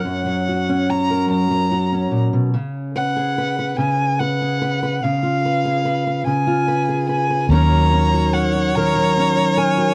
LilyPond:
<<
  \new Staff \with { instrumentName = "Violin" } { \time 6/8 \key cis \mixolydian \tempo 4. = 48 fis''4 ais''8 ais''4 r8 | r8 fis''4 gis''8 fis''4 | eis''4. gis''4 gis''8 | ais''4 fis''8 ais''4 gis''8 | }
  \new Staff \with { instrumentName = "Viola" } { \time 6/8 \key cis \mixolydian r2. | r2. | r2. | cis''2. | }
  \new Staff \with { instrumentName = "Steel-string acoustic guitar" } { \time 6/8 \key cis \mixolydian << { r8 fis'16 cis'16 fis'16 ais'8. fis'16 cis'8. | r8 b'16 gis'16 b'16 b'8. b'16 gis'16 b'16 b'16 | r8 b'16 gis'16 b'16 b'8. b'16 gis'16 b'16 b'16 | <fis cis' fis' ais'>8 cis'16 fis'16 ais'16 fis'16 ais'8 cis'16 fis'16 ais'16 fis'16 | } \\ { <fis, fis>16 fis4~ fis16 fis,16 fis8. ais,16 b,16 | cis4. cis4. | cis16 eis'4~ eis'16 cis16 eis'4~ eis'16 | dis16 fis4~ fis16 dis16 fis4~ fis16 | } >> }
  \new Staff \with { instrumentName = "Fingered electric bass" } { \clef bass \time 6/8 \key cis \mixolydian r2. | r2. | r2. | dis,2. | }
>>